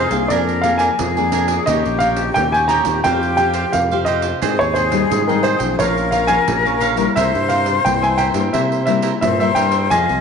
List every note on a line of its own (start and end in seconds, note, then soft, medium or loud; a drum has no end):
0.00 0.27 C3 medium
0.00 0.11 D#4 medium
0.00 0.11 G#4 medium
0.00 0.32 G#4 medium
0.00 0.11 C5 medium
0.11 0.26 C2 medium
0.11 0.58 A#3 medium
0.11 0.58 D4 medium
0.11 0.59 G#4 medium
0.11 0.29 G#4 soft
0.11 0.28 C5 soft
0.11 0.28 F5 soft
0.11 pandeiro medium
0.28 0.89 F2 medium
0.28 0.96 F3 soft
0.28 0.62 D4 medium
0.28 1.01 A#4 medium
0.28 0.63 A#4 medium
0.28 0.36 D5 medium
0.28 0.63 D5 medium
0.28 0.64 G#5 medium
0.28 pandeiro medium
0.49 pandeiro soft
0.61 0.96 A#3 medium
0.61 0.78 D4 soft
0.61 0.97 D4 medium
0.61 0.97 G#4 medium
0.61 0.79 A#4 soft
0.61 0.79 D5 soft
0.61 0.79 F5 medium
0.61 0.79 G#5 soft
0.61 pandeiro medium
0.78 0.90 D4 medium
0.78 0.90 A#4 medium
0.78 0.90 D5 medium
0.78 1.28 G#5 medium
0.78 0.90 G#5 medium
0.78 pandeiro medium
0.99 1.58 F2 medium
0.99 1.65 F3 medium
0.99 1.70 G#4 medium
0.99 pandeiro medium
1.17 1.63 A#3 medium
1.17 1.63 D4 medium
1.17 1.63 G#4 medium
1.17 1.31 A#4 soft
1.17 1.32 D5 soft
1.17 1.32 G#5 soft
1.17 pandeiro soft
1.32 1.48 D4 medium
1.32 1.48 A#4 medium
1.32 1.48 D5 medium
1.32 1.47 G#5 medium
1.32 pandeiro medium
1.48 1.66 A#4 soft
1.48 1.66 D5 soft
1.48 1.65 G#5 soft
1.48 pandeiro medium
1.66 1.82 D#2 medium
1.66 2.33 D#3 soft
1.66 2.31 A#3 soft
1.66 2.32 C#4 soft
1.66 1.99 D#4 medium
1.66 2.00 G4 medium
1.66 3.04 G4 medium
1.66 2.32 G4 medium
1.66 2.00 C#5 medium
1.66 2.02 D#5 medium
1.66 2.01 D#5 medium
1.66 pandeiro medium
1.86 2.29 A#1 medium
1.86 pandeiro soft
1.99 2.51 D#4 soft
1.99 2.52 G4 medium
1.99 2.52 C#5 soft
1.99 2.52 D#5 soft
1.99 2.07 F5 medium
1.99 pandeiro medium
2.16 pandeiro medium
2.34 2.80 D#2 medium
2.34 3.02 A#2 soft
2.34 2.82 A#3 medium
2.34 2.83 C#4 soft
2.34 2.83 G4 medium
2.34 2.51 G5 medium
2.34 pandeiro medium
2.52 2.68 G4 soft
2.52 2.69 C#5 soft
2.52 2.69 D#5 soft
2.52 2.71 G#5 medium
2.52 pandeiro soft
2.68 2.85 D#4 medium
2.68 2.85 G4 medium
2.68 2.85 C#5 medium
2.68 2.84 D#5 medium
2.68 3.05 A#5 medium
2.68 pandeiro medium
2.85 3.01 D#2 medium
2.85 3.33 C4 medium
2.85 3.33 F4 medium
2.85 3.33 G4 medium
2.85 3.03 G4 soft
2.85 3.03 C#5 soft
2.85 3.02 D#5 soft
2.85 pandeiro medium
3.04 3.64 F2 medium
3.04 3.70 F3 medium
3.04 3.36 F4 medium
3.04 3.36 G4 medium
3.04 4.11 G4 medium
3.04 3.37 C5 medium
3.04 3.38 F5 medium
3.04 3.35 G5 medium
3.04 pandeiro medium
3.23 pandeiro soft
3.37 3.71 C4 medium
3.37 3.53 F4 soft
3.37 3.71 F4 medium
3.37 3.53 G4 soft
3.37 3.72 G4 medium
3.37 3.53 C5 soft
3.37 3.54 F5 soft
3.37 3.73 G5 medium
3.37 pandeiro medium
3.54 3.64 F4 medium
3.54 3.64 G4 medium
3.54 3.64 C5 medium
3.54 3.65 F5 medium
3.54 pandeiro medium
3.72 4.32 F2 medium
3.72 4.39 C3 medium
3.72 4.05 F5 medium
3.72 pandeiro medium
3.91 4.37 C4 medium
3.91 4.38 F4 soft
3.91 4.06 G4 soft
3.91 4.38 G4 medium
3.91 4.06 C5 soft
3.91 4.07 F5 soft
3.91 pandeiro soft
4.05 4.23 F4 medium
4.05 4.22 G4 medium
4.05 4.22 C5 medium
4.05 4.59 D#5 medium
4.05 4.21 F5 medium
4.05 pandeiro medium
4.22 4.40 G4 soft
4.22 4.40 C5 soft
4.22 4.39 F5 soft
4.22 pandeiro medium
4.42 4.57 G#2 medium
4.42 5.08 G#2 medium
4.42 4.89 C4 soft
4.42 4.89 D#4 medium
4.42 4.73 G#4 medium
4.42 5.76 G#4 loud
4.42 4.74 C5 medium
4.42 4.75 D#5 medium
4.42 4.75 G5 medium
4.42 pandeiro medium
4.59 5.04 D#2 medium
4.59 4.75 C#5 medium
4.59 pandeiro soft
4.74 5.26 G#4 soft
4.74 5.28 C5 medium
4.74 5.26 C5 soft
4.74 5.26 D#5 soft
4.74 5.26 G5 soft
4.74 pandeiro medium
4.92 5.21 G3 medium
4.92 5.22 C4 medium
4.92 5.22 D#4 medium
4.92 pandeiro medium
5.11 5.55 G#2 medium
5.11 5.76 D#3 soft
5.11 pandeiro medium
5.27 5.57 G3 medium
5.27 5.58 C4 medium
5.27 5.58 D#4 medium
5.27 5.45 A#4 medium
5.27 5.42 C5 soft
5.27 5.43 D#5 soft
5.27 5.43 G5 soft
5.27 pandeiro soft
5.43 5.60 G#4 medium
5.43 5.80 C5 medium
5.43 5.59 C5 medium
5.43 5.58 D#5 medium
5.43 5.57 G5 medium
5.43 pandeiro medium
5.58 5.76 B1 medium
5.58 6.25 F3 medium
5.58 6.25 C#4 medium
5.58 6.25 F4 medium
5.58 5.77 C5 soft
5.58 5.76 D#5 soft
5.58 5.76 G5 soft
5.58 pandeiro medium
5.79 6.38 A#1 medium
5.79 6.45 A#2 medium
5.79 6.11 F4 medium
5.79 6.11 A#4 medium
5.79 7.13 A#4 medium
5.79 6.15 C#5 medium
5.79 6.12 C#5 medium
5.79 6.12 F5 medium
5.79 pandeiro medium
5.98 pandeiro soft
6.11 6.26 F4 soft
6.11 6.27 A#4 soft
6.11 6.27 C#5 soft
6.11 6.28 F5 medium
6.11 6.27 F5 soft
6.11 pandeiro medium
6.27 6.47 F3 medium
6.27 6.59 C#4 medium
6.27 6.38 F4 medium
6.27 6.59 F4 medium
6.27 6.39 A#4 medium
6.27 6.39 C#5 medium
6.27 6.39 F5 medium
6.27 6.77 G#5 medium
6.27 pandeiro medium
6.48 7.06 A#1 medium
6.48 6.65 F3 medium
6.48 pandeiro medium
6.65 6.95 F3 soft
6.65 6.95 C#4 medium
6.65 6.95 F4 medium
6.65 6.80 A#4 soft
6.65 6.80 C#5 soft
6.65 6.81 F5 soft
6.65 pandeiro soft
6.80 6.97 F4 medium
6.80 6.97 A#4 medium
6.80 6.96 C#5 medium
6.80 6.95 F5 medium
6.80 pandeiro medium
6.96 7.61 G3 medium
6.96 7.61 A#3 medium
6.96 7.62 E4 medium
6.96 7.14 A#4 soft
6.96 7.14 C#5 soft
6.96 7.14 F5 soft
6.96 pandeiro medium
7.16 7.31 C2 medium
7.16 7.82 C3 medium
7.16 7.49 E4 medium
7.16 7.48 A#4 medium
7.16 8.92 C5 loud
7.16 7.49 C5 medium
7.16 7.52 E5 medium
7.16 7.50 E5 medium
7.16 pandeiro medium
7.35 7.78 G2 medium
7.35 pandeiro soft
7.49 8.00 A#4 soft
7.49 8.01 C5 medium
7.49 7.82 F5 medium
7.49 pandeiro soft
7.66 pandeiro medium
7.85 8.29 C2 medium
7.85 8.51 G2 soft
7.85 8.31 G3 soft
7.85 8.32 A#3 medium
7.85 8.32 E4 medium
7.85 8.03 G5 medium
7.85 pandeiro medium
8.02 8.17 A#4 soft
8.02 8.18 C5 soft
8.02 8.18 E5 soft
8.02 8.08 G#5 medium
8.02 pandeiro soft
8.18 8.35 E4 medium
8.18 8.34 A#4 medium
8.18 8.33 C5 medium
8.18 8.33 E5 medium
8.18 8.54 G5 medium
8.18 pandeiro medium
8.34 8.50 G2 medium
8.34 8.82 G3 soft
8.34 8.82 A#3 soft
8.34 8.82 E4 medium
8.34 8.52 A#4 soft
8.34 8.52 C5 soft
8.34 8.51 E5 soft
8.34 pandeiro medium
8.53 9.12 C3 medium
8.53 9.19 C3 soft
8.53 8.86 E4 medium
8.53 8.86 A#4 medium
8.53 8.87 C5 medium
8.53 8.84 E5 medium
8.53 8.88 E5 medium
8.53 pandeiro medium
8.72 pandeiro soft
8.86 9.34 G3 medium
8.86 9.34 A#3 medium
8.86 9.01 E4 soft
8.86 9.34 E4 medium
8.86 9.02 A#4 soft
8.86 9.02 C5 soft
8.86 9.20 E5 medium
8.86 9.02 E5 soft
8.86 pandeiro medium
9.02 9.13 E4 medium
9.02 9.13 A#4 medium
9.02 9.13 C5 medium
9.02 9.13 E5 medium
9.02 pandeiro medium
9.21 9.88 G2 medium
9.21 9.53 A#2 medium
9.21 9.93 C5 loud
9.21 9.38 E5 medium
9.21 pandeiro medium
9.40 9.87 G3 medium
9.40 9.87 A#3 medium
9.40 9.87 E4 medium
9.40 9.55 A#4 soft
9.40 9.55 C5 soft
9.40 9.58 E5 medium
9.40 9.55 E5 soft
9.40 pandeiro soft
9.55 9.87 G2 medium
9.55 9.72 E4 medium
9.55 9.71 A#4 medium
9.55 9.71 C5 medium
9.55 9.70 E5 medium
9.55 9.88 G5 medium
9.55 pandeiro medium
9.71 9.89 A#4 soft
9.71 9.89 C5 soft
9.71 9.89 E5 soft
9.71 pandeiro medium
9.90 10.06 F2 medium
9.90 10.21 F3 soft
9.90 10.21 C4 medium
9.90 10.21 F4 medium
9.90 10.21 F4 soft
9.90 10.21 G#4 medium
9.90 10.21 C5 medium
9.90 10.21 D#5 loud
9.90 10.21 F5 medium
9.90 10.21 G#5 medium
9.90 pandeiro medium
10.09 10.21 C2 medium
10.09 pandeiro soft